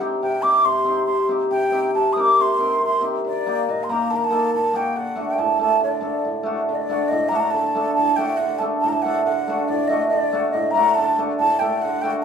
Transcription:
Already playing: hammered dulcimer C3
0.00 hammered dulcimer C4 D#4 G4
0.22 hammered dulcimer C3, flute G5
0.42 hammered dulcimer C4 D#4 G4, flute D6
0.65 hammered dulcimer C3, flute C6
0.84 hammered dulcimer C4 D#4 G4
1.06 hammered dulcimer C3, flute C6
1.29 hammered dulcimer C4 D#4 G4
1.51 hammered dulcimer C3, flute G5
1.72 hammered dulcimer C4 D#4 G4
1.95 hammered dulcimer C3, flute A5
2.13 hammered dulcimer C4, flute D#6
2.17 hammered dulcimer D#4 A#4, flute D6
2.39 hammered dulcimer C3, flute C6
2.59 hammered dulcimer C4 D#4 A#4
2.81 hammered dulcimer C3
2.85 flute C6
3.01 hammered dulcimer C4 D#4 G4
3.24 hammered dulcimer D#3, flute D5
3.46 hammered dulcimer A#3 D#4 G4
3.69 hammered dulcimer A#2, flute D#5
3.84 flute C6
3.89 hammered dulcimer A#3 D#4 G4, flute A#5
4.10 hammered dulcimer D#3, flute A5
4.16 flute A#5
4.24 flute A5
4.30 hammered dulcimer A#3 D#4 A4
4.54 hammered dulcimer A#2, flute A5
4.73 hammered dulcimer A#3 D#4 F#4, flute G5
4.96 hammered dulcimer D3, flute F#5
5.16 hammered dulcimer A3 D4 F#4
5.29 flute G5
5.38 hammered dulcimer A2, flute A5
5.59 hammered dulcimer A3 D4 A4, flute A5
5.80 hammered dulcimer D3, flute D5
6.01 hammered dulcimer A3 D4 A4
6.25 hammered dulcimer A2
6.43 hammered dulcimer A3 D4 F#4
6.69 hammered dulcimer D3, flute D5
6.75 flute D#5
6.81 flute D5
6.89 hammered dulcimer A3 D4 F#4
7.08 hammered dulcimer A2, flute D#5
7.29 hammered dulcimer A3 D4 F#4, flute A#5
7.36 flute A5 A#5
7.51 hammered dulcimer D3, flute A5
7.75 hammered dulcimer A3 D4 A4
7.94 hammered dulcimer A2, flute A5
8.16 hammered dulcimer A3 D4 F#4, flute G5
8.37 hammered dulcimer D3, flute F#5
8.59 hammered dulcimer A3 D4 A4, flute A5
8.80 hammered dulcimer A2, flute A5
8.89 flute A5 A#5
9.02 hammered dulcimer A3 D4, flute F#5
9.06 hammered dulcimer A4
9.25 hammered dulcimer D3, flute F#5
9.48 hammered dulcimer A3 D4 F#4
9.68 hammered dulcimer A2, flute D5
9.88 hammered dulcimer A3 D4 F#4, flute D#5
10.08 flute D#5
10.12 hammered dulcimer D3
10.19 flute D5
10.32 hammered dulcimer A3 D4 F#4
10.51 hammered dulcimer A2, flute D#5
10.71 hammered dulcimer A3, flute A#5
10.76 hammered dulcimer D4 F#4
10.89 flute A#5
10.94 hammered dulcimer D3, flute A5
11.18 hammered dulcimer A3 D4 F#4
11.39 hammered dulcimer A2, flute A5
11.59 hammered dulcimer A3 D4 A4, flute G5
11.82 hammered dulcimer D3, flute F#5
12.02 hammered dulcimer A3 D4 F#4, flute G5
12.11 flute G5

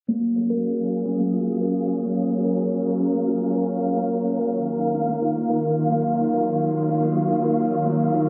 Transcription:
0.08 string machine F#3, kalimba A#3, synth texture F5
0.30 string machine C#4 G#4
0.36 kalimba A#3
0.50 kalimba A#4
1.05 kalimba C#4
1.19 kalimba A#3
1.33 kalimba F4
1.47 kalimba F4
1.61 kalimba A#4
2.03 kalimba A#3
2.08 string machine A#4
2.31 kalimba A#3
2.44 kalimba A#4
3.00 kalimba C#4
3.14 kalimba A#3
3.28 kalimba F4
3.41 kalimba F4
3.55 kalimba A#4
3.97 kalimba A#3
4.25 kalimba A#3
4.39 kalimba A#4
4.53 string machine D#3
4.79 string machine A#3
4.94 kalimba D4
5.08 kalimba A#3
5.22 kalimba F4
5.36 string machine F4, kalimba F4
5.49 string machine F#3, kalimba A#4
5.92 kalimba A#3
6.19 kalimba A#3
6.33 kalimba A#4
6.89 kalimba D4
7.03 kalimba A#3
7.17 kalimba F4
7.31 kalimba F4
7.44 kalimba A#4
7.86 kalimba A#3
8.14 kalimba D4

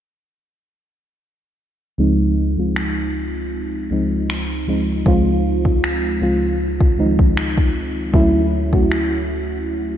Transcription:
1.98 fm electric piano C#2 F3 G#3 C4 D#4
2.57 fm electric piano C#2 F3 G#3 C4 F4
2.76 finger snap
3.91 fm electric piano C#2 F3 G#3 C4 D#4
4.30 finger snap
4.67 fm electric piano C#2 F3 G#3 C4 D#4
5.06 fm electric piano C#2 F3 G#3 C4 F4, kick
5.65 kick
5.84 finger snap
6.21 fm electric piano C#2 F3 G#3 C4 F4
6.81 kick
6.98 fm electric piano C#2 D#3 G#3 C4 D#4
7.05 fm electric piano F3
7.19 kick
7.37 finger snap
7.58 kick
8.13 fm electric piano D2 F#3 A3 C#4 E4, kick
8.73 fm electric piano D2 F#3 A3 C#4 F#4, kick
8.92 finger snap

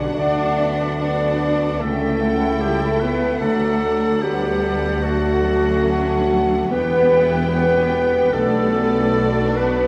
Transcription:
Already playing: double bass section B1, tuba B1, harp B2 F#3 B3 D4 F#4 B4 D5 B5, cello section D3, bassoon G3, violin section C#4 F#5, french horn section D4, viola section D4 F#4
0.15 double bass section D2, tuba D2, harp D3, bassoon A3, violin section D4, cello section D4, french horn section D5, clarinet D5, flute section F#5
0.19 oboe D5
0.39 harp F#3
0.59 violin section B3, harp D4, flute section E5
0.81 harp A4
0.99 violin section A3, bassoon B3, cello section D4, harp F#4, french horn section D5, clarinet D5, oboe D5, flute section D5
1.21 harp D5
1.41 harp A5
1.62 harp F#5
1.80 double bass section C#2, tuba C#2, harp C#3, bassoon A3, cello section A3, violin section C#4 G5, viola section E4 A4, french horn section A4, oboe A4, clarinet A4, flute section E5
2.02 harp C#4
2.21 harp G3, violin section E4, flute section F#5
2.41 harp E4
2.61 cello section G3, clarinet G4, oboe G4, french horn section G4, harp A4, flute section E5
2.80 cello section A3, harp G4, oboe A4, clarinet A4, french horn section A4
3.00 cello section B3, oboe B4, french horn section B4, clarinet B4, harp E5
3.22 harp A5
3.40 double bass section D2, tuba D2, harp D3, bassoon F#3, cello section A3, violin section D4 F#5, viola section D4, french horn section A4, oboe A4, clarinet A4
3.62 harp F#3
3.82 harp D4
4.02 harp A4
4.22 bassoon F#3, cello section G3, violin section B3, harp F#4, oboe G4, french horn section G4, clarinet G4, flute section D5
4.42 harp D5
4.63 bassoon G3, harp A5
4.83 harp F#5
5.02 cello section F#3, bassoon A3, violin section A3, oboe F#4, clarinet F#4, french horn section F#4, harp A5
5.24 harp D5
5.44 violin section C#4, harp A4
5.65 harp D4
5.84 harp F#3, bassoon A3, flute section F#5
6.07 harp D4
6.28 harp F#3
6.50 harp D4
6.69 tuba E1, double bass section E2, harp E3, cello section B3, viola section B3 G4, bassoon B3, violin section B3 G5, oboe B4, clarinet B4, french horn section B4, flute section G5
6.92 harp G3
7.12 harp B3, violin section E4
7.32 harp G4
7.50 cello section B3, bassoon B3, harp B3, violin section C#4, oboe B4, french horn section B4, clarinet B4, flute section G5
7.72 harp B4
7.92 violin section B3, harp G5
8.32 double bass section B1, tuba B1, harp B2, cello section A3, bassoon B3, violin section D4 D5, french horn section A4, oboe A4, clarinet A4, flute section D5
8.53 harp F#3
8.74 harp B3, violin section C#4
8.95 harp D4
9.15 violin section D4, harp F#4, viola section F#4
9.37 harp B4
9.56 cello section B3, french horn section B4, oboe B4, clarinet B4, harp D5
9.78 harp F#5

